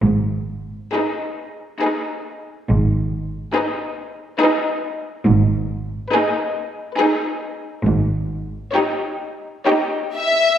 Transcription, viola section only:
X:1
M:3/4
L:1/8
Q:1/4=69
K:G#m
V:1 name="Viola section"
z2 D2 D2 | z2 D2 D2 | z2 D2 D2 | z2 D2 D2 |]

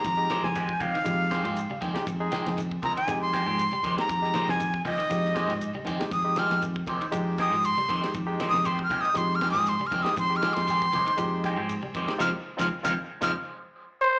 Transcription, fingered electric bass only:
X:1
M:4/4
L:1/16
Q:"Swing 16ths" 1/4=118
K:Fm
V:1 name="Fingered electric bass" clef=bass
F,,2 z F,,3 C,, z F,,3 A,,2 z F,, z | F,,2 z F,,3 C,, z F,,3 A,,2 z F,, z | F,,2 z F,,3 C,, z F,,3 A,,2 z F,, z | F,,2 z F,,3 C,, z F,,3 A,,2 z F,, z |
F,,2 z F,,3 C,, z F,,3 A,,2 z F,, z | F,,2 z F,,3 C,, z F,,3 A,,2 z F,, z | F,, z2 F,, z F,, z2 F,, z6 z |]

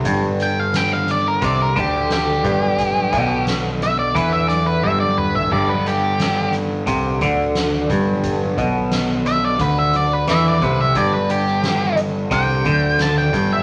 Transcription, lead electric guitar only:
X:1
M:4/4
L:1/16
Q:1/4=88
K:G
V:1 name="Lead electric guitar"
z2 g =f g f d _B d B G2 G4- | G4 z2 e d B e d B e d B e | d B G4 z8 z2 | z6 e d B e d B e d B e |
d B G4 z2 g4 a g2 e |]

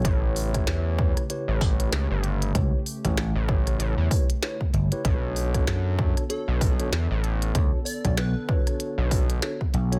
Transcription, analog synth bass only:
X:1
M:4/4
L:1/16
Q:"Swing 16ths" 1/4=96
K:Bm
V:1 name="Analog synth bass" clef=bass
A,,,4 E,,3 z2 A,,,3 C,, G,,,3 | z4 z A,,,3 A,,, E,, z6 | B,,,4 F,,3 z2 B,,,3 E,, A,,,3 | z8 z B,,,3 z4 |]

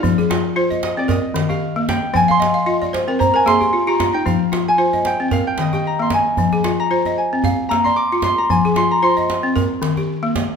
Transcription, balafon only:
X:1
M:4/4
L:1/16
Q:"Swing 16ths" 1/4=114
K:Fdor
V:1 name="Balafon"
E A F2 c e3 B3 G3 z2 | g f e f e d c B c B A G F G F E- | E z F2 c e3 B3 G3 z2 | z A F2 c e3 f3 d3 z2 |
z A F2 c e3 B3 G3 z2 |]
V:2 name="Balafon"
F,2 z2 F2 z C z2 E,2 z B,2 z | F,2 z2 F2 z C z2 B,2 z F2 z | F,2 z2 F2 z C z2 E,2 z B,2 z | F,2 z2 F2 z C z2 B,2 z F2 z |
F,2 z2 F2 z C z2 E,2 z B,2 z |]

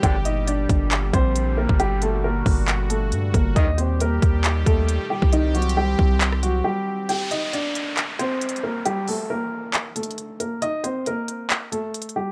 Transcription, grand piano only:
X:1
M:4/4
L:1/8
Q:1/4=136
K:Gm
V:1 name="Grand piano"
[Gg] [Ee] [Dd]2 z [Cc]2 [B,B] | [G,G] [A,A] [B,B]2 z [A,A]2 [B,B] | [Ee] [Cc] [B,B]2 z [A,A]2 [G,G] | [E,E] [^F,^F] [G,G]2 z [F,F] [G,G]2 |
[Gg] [Ee] [Dd]2 z [Cc]2 [B,B] | [G,G] [A,A] [B,B]2 z [A,A]2 [B,B] | [Ee] [Cc] [B,B]2 z [A,A]2 [G,G] |]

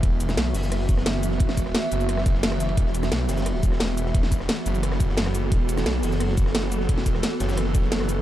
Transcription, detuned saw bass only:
X:1
M:4/4
L:1/8
Q:1/4=175
K:Clyd
V:1 name="Detuned saw bass" clef=bass
E,,,2 B,,, F,,,4- F,,, | E,,,2 z F,,,4- F,,, | E,,,2 B,,, F,,,2 E,,,3 | E,,,2 z F,,,4- F,,, |
E,,,2 B,,, F,,,4- F,,, | E,,,2 z F,,,4- F,,, |]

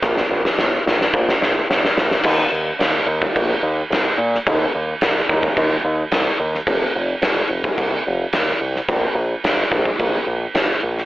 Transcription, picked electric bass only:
X:1
M:4/4
L:1/8
Q:1/4=108
K:Eb
V:1 name="Picked electric bass" clef=bass
B,,, B,,, G,,, B,,, B,,, B,,, G,,, B,,, | E,, E,, E,, E,, B,,, E,, C,, B,, | E,, E,, C,, E,, E,, E,, C,, E,, | F,,, F,,, F,,, F,,, C,, F,,, E,, C,, |
B,,, B,,, G,,, B,,, B,,, B,,, G,,, B,,, |]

